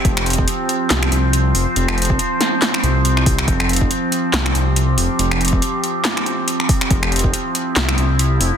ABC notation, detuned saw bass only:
X:1
M:4/4
L:1/8
Q:"Swing 16ths" 1/4=140
K:Cphr
V:1 name="Detuned saw bass" clef=bass
F,,,2 z2 C,, C,,2 F,,, | F,,,2 z3 C,,3 | F,,,2 z2 C,, C,,2 F,,, | F,,,2 z6 |
F,,,2 z2 C,, C,,2 F,,, |]